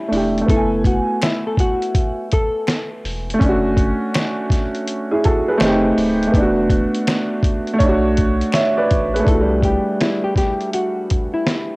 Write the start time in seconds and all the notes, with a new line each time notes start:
Already playing: G3 E4
0.09 E1 A3 D4
0.13 E4 G4, open hi-hat
0.38 A3, closed hi-hat
0.46 F#1 B3 A4, kick, closed hi-hat
0.51 E4
0.56 G#5
0.84 F#4, kick, closed hi-hat
1.22 E4, finger snap, snare, closed hi-hat
1.47 A4
1.57 F#4, kick, closed hi-hat
1.82 closed hi-hat
1.95 kick, closed hi-hat
2.32 A4, kick, closed hi-hat
2.67 finger snap, snare, closed hi-hat
3.04 E1, open hi-hat
3.30 A3, closed hi-hat
3.39 F#1 C#4, kick, closed hi-hat
3.44 D4
3.49 F#4
3.77 kick, closed hi-hat
4.14 finger snap, snare, closed hi-hat
4.50 kick, snare, closed hi-hat
4.75 closed hi-hat
4.88 closed hi-hat
5.11 E4 G#4
5.24 F#4 A4, kick, closed hi-hat
5.48 G#4 B4
5.58 F1 A3 C4, finger snap, snare
5.62 D#4 G4, closed hi-hat
5.97 D1, open hi-hat
6.23 closed hi-hat
6.27 A3
6.32 E1 B3, kick, closed hi-hat
6.37 D4
6.42 F#4
6.70 kick, closed hi-hat
6.95 closed hi-hat
7.07 finger snap, snare, closed hi-hat
7.43 kick, closed hi-hat
7.67 closed hi-hat
7.74 A3
7.79 B1 C#5, kick, closed hi-hat
7.83 D4
7.88 F#4
8.17 kick, closed hi-hat
8.41 closed hi-hat
8.52 C#5 E5, finger snap, snare, closed hi-hat
8.77 B4 D5
8.91 A1, kick, closed hi-hat
9.14 G#4 B4, closed hi-hat
9.20 A3
9.24 C2 D4 A4, kick, closed hi-hat
9.29 E4
9.34 F#4
9.41 G3
9.62 G4, kick, closed hi-hat
10.01 E4, snare, closed hi-hat
10.24 G4
10.36 G4, kick, snare, closed hi-hat
10.61 closed hi-hat
10.73 F#4, closed hi-hat
11.10 kick, closed hi-hat
11.34 E4
11.47 snare, closed hi-hat